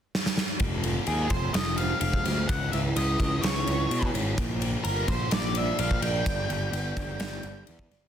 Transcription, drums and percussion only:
0.15 snare
0.26 snare
0.37 snare
0.60 kick, ride
0.84 ride
1.07 ride
1.30 kick, ride
1.54 snare, ride
1.78 ride
2.01 ride
2.13 kick
2.25 snare, ride
2.49 kick, ride
2.73 ride
2.96 ride
3.20 kick, ride
3.43 snare, ride
3.67 ride
3.91 ride
4.02 kick
4.15 ride
4.38 kick, ride
4.62 ride
4.85 ride
5.08 kick, ride
5.31 snare, ride
5.55 ride
5.79 ride
5.91 kick
6.02 ride
6.26 kick, ride
6.50 ride
6.73 ride
6.97 kick, ride
7.20 snare, ride
7.43 ride
7.67 ride
7.79 kick
7.91 snare, ride

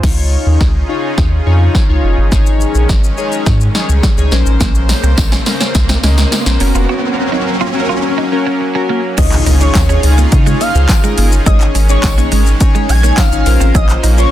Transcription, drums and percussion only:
0.03 kick, snare, crash
0.61 kick, snare
1.18 kick, snare
1.75 kick, snare
2.32 kick, snare, shaker
2.46 shaker
2.61 shaker
2.75 shaker
2.89 kick, snare, shaker
3.04 shaker
3.18 shaker
3.32 shaker
3.46 kick, snare, shaker
3.61 shaker
3.75 snare, shaker
3.89 shaker
4.03 kick, snare, shaker
4.18 shaker
4.32 snare, shaker
4.46 shaker
4.61 kick, snare, closed hi-hat, shaker
4.75 shaker
4.89 snare, open hi-hat, shaker
5.03 shaker
5.18 kick, snare, closed hi-hat, tambourine, shaker
5.32 snare, shaker
5.46 snare, open hi-hat, shaker
5.61 snare, shaker
5.75 kick, snare, closed hi-hat, shaker
5.89 snare, shaker
6.03 snare, open hi-hat, shaker
6.18 snare, shaker
6.32 snare, closed hi-hat, tambourine, shaker
6.46 snare, shaker
6.60 open hi-hat, shaker
6.75 shaker
9.18 kick, closed hi-hat, crash, shaker
9.32 clap, shaker
9.46 open hi-hat, shaker
9.61 shaker
9.75 kick, snare, clap, closed hi-hat, tambourine, shaker
9.90 shaker
10.03 open hi-hat, shaker
10.18 shaker
10.32 kick, closed hi-hat, shaker
10.46 shaker
10.61 open hi-hat, shaker
10.75 shaker
10.89 kick, snare, clap, closed hi-hat, tambourine, shaker
11.04 shaker
11.18 open hi-hat, shaker
11.32 shaker
11.46 kick, closed hi-hat, shaker
11.61 clap, shaker
11.75 open hi-hat, shaker
11.89 shaker
12.03 kick, snare, clap, closed hi-hat, tambourine, shaker
12.18 shaker
12.32 open hi-hat, shaker
12.46 shaker
12.61 kick, closed hi-hat, shaker
12.75 shaker
12.89 open hi-hat, shaker
13.04 shaker
13.18 kick, snare, clap, closed hi-hat, tambourine, shaker
13.32 shaker
13.46 open hi-hat, shaker
13.61 shaker
13.75 kick, closed hi-hat, shaker
13.89 clap, shaker
14.04 open hi-hat, shaker
14.18 shaker

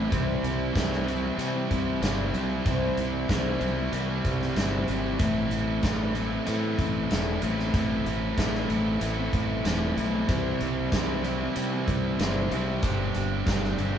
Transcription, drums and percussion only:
0.12 kick, closed hi-hat
0.44 closed hi-hat
0.76 kick, snare, closed hi-hat
0.93 snare
1.08 closed hi-hat
1.39 closed hi-hat
1.71 kick, closed hi-hat
2.03 snare, closed hi-hat
2.34 closed hi-hat
2.66 kick, closed hi-hat
2.98 closed hi-hat
3.29 kick, snare, closed hi-hat
3.61 closed hi-hat
3.93 closed hi-hat
4.25 kick, closed hi-hat
4.42 snare
4.56 snare, closed hi-hat
4.88 closed hi-hat
5.19 kick, closed hi-hat
5.51 closed hi-hat
5.83 kick, snare, closed hi-hat
6.15 closed hi-hat
6.47 closed hi-hat
6.79 kick, closed hi-hat
7.11 snare, closed hi-hat
7.42 closed hi-hat
7.59 snare
7.74 kick, closed hi-hat
8.06 closed hi-hat
8.38 kick, snare, closed hi-hat
8.55 snare
8.70 closed hi-hat
9.01 closed hi-hat
9.33 kick, closed hi-hat
9.65 snare, closed hi-hat
9.98 closed hi-hat
10.29 kick, closed hi-hat
10.61 closed hi-hat
10.92 kick, snare, closed hi-hat
11.24 closed hi-hat
11.56 closed hi-hat
11.88 kick, closed hi-hat
12.20 snare, closed hi-hat
12.52 closed hi-hat
12.83 kick, closed hi-hat
13.15 closed hi-hat
13.47 kick, snare, closed hi-hat
13.64 snare
13.79 closed hi-hat

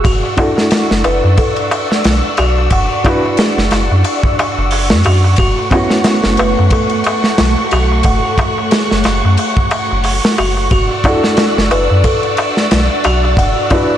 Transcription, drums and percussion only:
0.04 kick, ride, darbuka tek
0.24 darbuka tek
0.37 kick, ride, darbuka tek
0.57 snare, darbuka tek
0.71 snare, ride, darbuka tek
0.90 snare, darbuka tek
1.04 ride, darbuka tek
1.24 darbuka tek
1.38 kick, ride, darbuka tek
1.56 ride, darbuka tek
1.71 ride, darbuka tek
1.91 snare, darbuka tek
2.04 snare, ride, darbuka tek
2.24 darbuka tek
2.37 ride, darbuka tek
2.58 darbuka tek
2.71 kick, ride, darbuka tek
2.93 darbuka tek
3.05 kick, ride, darbuka tek
3.26 darbuka tek
3.37 snare, ride, darbuka tek
3.58 snare, darbuka tek
3.71 snare, ride, darbuka tek
3.91 darbuka tek
4.04 ride, darbuka tek
4.23 kick, darbuka tek
4.39 ride, darbuka tek
4.58 darbuka tek
4.71 open hi-hat, darbuka tek
4.90 snare, darbuka tek
5.04 ride, darbuka tek
5.24 darbuka tek
5.36 kick, ride, darbuka tek
5.58 darbuka tek
5.71 kick, ride, darbuka tek
5.90 snare, darbuka tek
6.04 snare, ride, darbuka tek
6.24 snare, darbuka tek
6.37 ride, darbuka tek
6.59 darbuka tek
6.70 kick, ride, darbuka tek
6.89 ride, darbuka tek
7.04 ride, darbuka tek
7.24 snare, darbuka tek
7.38 snare, ride, darbuka tek
7.58 darbuka tek
7.71 ride, darbuka tek
7.92 darbuka tek
8.03 kick, ride, darbuka tek
8.25 darbuka tek
8.38 kick, ride, darbuka tek
8.58 darbuka tek
8.71 snare, ride, darbuka tek
8.91 snare, darbuka tek
9.04 snare, ride, darbuka tek
9.25 darbuka tek
9.37 ride, darbuka tek
9.57 kick, darbuka tek
9.71 ride, darbuka tek
9.91 darbuka tek
10.04 open hi-hat, darbuka tek
10.24 snare, darbuka tek
10.38 ride, darbuka tek
10.57 darbuka tek
10.71 kick, ride, darbuka tek
10.91 darbuka tek
11.04 kick, ride, darbuka tek
11.23 snare, darbuka tek
11.37 snare, ride, darbuka tek
11.57 snare, darbuka tek
11.71 ride, darbuka tek
11.90 darbuka tek
12.04 kick, ride, darbuka tek
12.23 ride, darbuka tek
12.37 ride, darbuka tek
12.57 snare, darbuka tek
12.71 snare, ride, darbuka tek
12.90 darbuka tek
13.04 ride, darbuka tek
13.24 darbuka tek
13.37 kick, ride, darbuka tek
13.57 darbuka tek
13.70 kick, ride, darbuka tek
13.90 darbuka tek

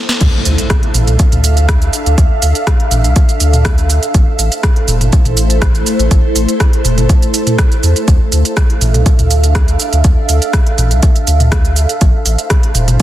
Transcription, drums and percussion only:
0.09 snare
0.21 kick, closed hi-hat, crash, shaker
0.45 open hi-hat, shaker
0.58 closed hi-hat, shaker
0.70 kick, cross-stick, closed hi-hat, shaker
0.83 closed hi-hat
0.94 mid tom, open hi-hat, shaker
1.07 closed hi-hat, mid tom, shaker
1.19 kick, closed hi-hat, shaker
1.32 closed hi-hat, mid tom, shaker
1.44 open hi-hat, shaker
1.57 closed hi-hat, shaker
1.69 kick, cross-stick, closed hi-hat, shaker
1.82 closed hi-hat, shaker
1.93 open hi-hat, shaker
2.06 closed hi-hat, shaker
2.18 kick, closed hi-hat, shaker
2.42 open hi-hat, shaker
2.55 closed hi-hat, shaker
2.67 kick, cross-stick, closed hi-hat, shaker
2.80 closed hi-hat
2.91 mid tom, open hi-hat, shaker
3.04 closed hi-hat, shaker
3.16 kick, closed hi-hat, shaker
3.29 closed hi-hat, shaker
3.40 open hi-hat, shaker
3.53 closed hi-hat, mid tom, shaker
3.65 kick, cross-stick, closed hi-hat, shaker
3.78 closed hi-hat, shaker
3.90 open hi-hat, shaker
4.03 closed hi-hat, shaker
4.14 kick, closed hi-hat, shaker
4.39 open hi-hat, shaker
4.52 closed hi-hat, shaker
4.63 kick, cross-stick, closed hi-hat, shaker
4.76 closed hi-hat
4.88 mid tom, open hi-hat, shaker
5.01 closed hi-hat, mid tom, shaker
5.12 kick, closed hi-hat, shaker
5.25 closed hi-hat, mid tom, shaker
5.37 open hi-hat, shaker
5.50 closed hi-hat, shaker
5.62 kick, cross-stick, closed hi-hat, shaker
5.75 closed hi-hat, shaker
5.86 open hi-hat, shaker
5.99 closed hi-hat, shaker
6.11 kick, closed hi-hat, shaker
6.36 open hi-hat, shaker
6.49 closed hi-hat, shaker
6.60 kick, cross-stick, closed hi-hat, shaker
6.73 closed hi-hat
6.85 mid tom, open hi-hat, shaker
6.98 closed hi-hat, mid tom, shaker
7.09 kick, closed hi-hat, shaker
7.22 closed hi-hat, shaker
7.34 open hi-hat, shaker
7.47 closed hi-hat, mid tom, shaker
7.58 kick, cross-stick, closed hi-hat, shaker
7.72 closed hi-hat, shaker
7.83 open hi-hat, shaker
7.96 closed hi-hat, shaker
8.08 kick, closed hi-hat, shaker
8.32 open hi-hat, shaker
8.45 closed hi-hat, shaker
8.57 kick, cross-stick, closed hi-hat, shaker
8.70 closed hi-hat
8.81 mid tom, open hi-hat, shaker
8.94 closed hi-hat, mid tom, shaker
9.06 kick, closed hi-hat, shaker
9.19 closed hi-hat, mid tom, shaker
9.31 open hi-hat, shaker
9.44 closed hi-hat, shaker
9.55 kick, cross-stick, closed hi-hat, shaker
9.68 closed hi-hat, shaker
9.79 open hi-hat, shaker
9.93 closed hi-hat, shaker
10.04 kick, closed hi-hat, shaker
10.29 open hi-hat, shaker
10.42 closed hi-hat, shaker
10.53 kick, cross-stick, closed hi-hat, shaker
10.66 closed hi-hat
10.78 mid tom, open hi-hat, shaker
10.91 closed hi-hat, shaker
11.03 kick, closed hi-hat, shaker
11.16 closed hi-hat, shaker
11.27 open hi-hat, shaker
11.40 closed hi-hat, mid tom, shaker
11.52 kick, cross-stick, closed hi-hat, shaker
11.65 closed hi-hat, shaker
11.76 open hi-hat, shaker
11.89 closed hi-hat, shaker
12.01 kick, closed hi-hat, shaker
12.26 open hi-hat, shaker
12.38 closed hi-hat, shaker
12.50 kick, cross-stick, closed hi-hat, shaker
12.63 closed hi-hat
12.75 mid tom, open hi-hat, shaker
12.88 closed hi-hat, mid tom, shaker

